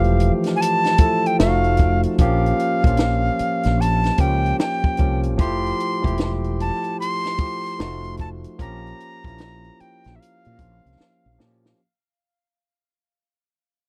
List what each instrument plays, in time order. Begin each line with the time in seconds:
Already playing: fretless electric bass E1, tine electric piano E3 F3 A3 G4, recorder F5
0.04 closed hi-hat
0.20 closed hi-hat
0.44 snare, closed hi-hat
0.56 recorder G#5
0.61 recorder A5, closed hi-hat
0.84 snare, closed hi-hat
0.98 tine electric piano F3 A3 E4 A4, kick, closed hi-hat
1.26 recorder G5, closed hi-hat
1.39 fretless electric bass F1, tine electric piano F3 A3 D#4 F4, recorder F5, snare, closed hi-hat
1.48 tine electric piano F#4
1.64 closed hi-hat
1.77 kick, closed hi-hat
2.03 closed hi-hat
2.18 fretless electric bass A#1, tine electric piano F3 A#3 C#4 G4, recorder F5, kick, closed hi-hat
2.46 closed hi-hat
2.59 closed hi-hat
2.84 fretless electric bass A#1, tine electric piano F3 A#3 C#4 F4, kick, closed hi-hat
2.97 snare, closed hi-hat
3.39 muted fretless electric bass stroke, closed hi-hat
3.63 fretless electric bass A#1, snare, closed hi-hat
3.81 recorder A5, closed hi-hat
4.04 snare, closed hi-hat
4.18 fretless electric bass C#2, tine electric piano F3 A#3 C#4 G4, recorder G5, kick, closed hi-hat
4.46 closed hi-hat
4.60 recorder G5, snare, closed hi-hat
4.84 kick
4.97 fretless electric bass C2, tine electric piano F3 A#3 C#4 G4, kick, closed hi-hat
5.23 closed hi-hat
5.38 fretless electric bass F1, tine electric piano F3 A3 E4 G4, recorder C6, kick, closed hi-hat
5.66 closed hi-hat
5.80 closed hi-hat
6.03 fretless electric bass E1, tine electric piano F3 A3 E4 G4, kick
6.07 closed hi-hat
6.18 snare, closed hi-hat
6.44 closed hi-hat
6.60 recorder A5, closed hi-hat
6.84 closed hi-hat
7.00 recorder C6, closed hi-hat
7.24 snare, closed hi-hat
7.38 tine electric piano F3 A3 E4 G4, kick, closed hi-hat
7.66 closed hi-hat
7.79 fretless electric bass F1, tine electric piano F3 A3 D#4 F#4, snare, closed hi-hat
8.04 closed hi-hat
8.17 recorder A5, kick, closed hi-hat
8.44 closed hi-hat
8.59 fretless electric bass A#1, tine electric piano F3 A#3 C#4 G4, recorder A#5, kick, closed hi-hat
8.87 closed hi-hat
9.00 closed hi-hat
9.24 fretless electric bass A#1, tine electric piano F3 A#3 C#4 E4, kick, closed hi-hat
9.38 snare, closed hi-hat
9.64 closed hi-hat
9.80 recorder G5, muted fretless electric bass stroke, closed hi-hat
10.04 fretless electric bass A#1, snare, closed hi-hat
10.16 recorder E5
10.20 recorder F5, closed hi-hat
10.45 fretless electric bass A#2, closed hi-hat
10.59 fretless electric bass A#1, tine electric piano F3 A#3 C#4 F4, kick, closed hi-hat
10.86 fretless electric bass C2, closed hi-hat
11.00 snare
11.26 fretless electric bass A#1
11.38 fretless electric bass A#2, tine electric piano F3 A#3 C#4 G4, snare
11.66 snare